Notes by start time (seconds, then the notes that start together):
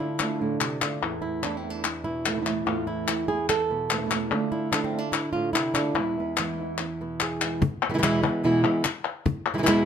Already playing: D3 A3
0.00 A3 D4 E4 F4
0.19 D3 A3 D4 F4, clap
0.39 A2 A3 D4 F4
0.61 C3, muted nylon-string guitar stroke, clap
0.81 D3 A3 D4 F4, clap
1.02 E2 A2 E3 A3 B3 E4, clap
1.22 E4
1.43 E3 A3 B3 D4 E4, clap
1.57 C4
1.63 E3 A3 B3 E4
1.70 D4
1.84 E4, muted nylon-string guitar stroke, clap
2.04 B2 E4
2.25 E3 A3 B3 E4, clap
2.32 A2 E3 A3 B3 E4
2.37 A2 E3 A3 B3 E4
2.41 A2 E3 A3 B3 E4
2.46 E2 A2 E3 A3 B3 E4, clap
2.66 E2 A2 E3 A3 B3 E4 F4
2.87 E4
3.08 E3 A3 B3 E4, clap
3.28 E3 A3 B3 E4 G#4
3.49 A4, muted nylon-string guitar stroke, clap
3.70 B2 B3
3.90 E3 A3 B3 E4, clap
3.97 A2 E3 A3 B3 E4
4.01 A2 E3 A3 B3 E4
4.06 A2 E3 A3 B3 E4
4.11 E2 A2 E3 A3 B3 E4, clap
4.31 D3 A3 D4 F4
4.52 A3 D4 E4 F4
4.72 D3 A3 D4 F4, clap
4.84 C4
4.93 A3 D4 F4
4.98 D4
5.12 E4, muted nylon-string guitar stroke, clap
5.33 A2 F4
5.53 C3 E4, clap
5.74 D3 D4 F4, clap
5.78 A3
5.95 E2 B2 E3 G#3 B3 E4
5.99 E4
6.18 E3 G#3 B3 E4
6.37 E3 G#3 B3 E4, clap
6.59 E3 G#3 B3 E4
6.78 B3, muted nylon-string guitar stroke, clap
7.01 B2 B3
7.20 G#4, clap
7.41 E3 G#3 B3 E4, clap
7.62 muted nylon-string guitar stroke, cajon bass
7.90 B2 E3 G#3 B3 E4
7.94 B2 E3 G#3 B3 E4
7.98 B2 E3 G#3 B3 E4
8.03 E2 B2 E3 G#3 B3 E4, cajon slap, clap
8.23 E3 G#3 B3 E4, cajon bass
8.44 E2 B2 E3 G#3 B3 E4
8.64 E3 G#3 B3 E4
8.84 muted nylon-string guitar stroke, cajon slap, clap
9.05 cajon slap
9.26 muted nylon-string guitar stroke, cajon bass
9.54 B2 E3 G#3 B3 E4
9.58 B2 E3 G#3 B3 E4
9.63 B2 E3 G#3 B3 E4, clap
9.67 E2 B2 E3 G#3 B3 E4, cajon slap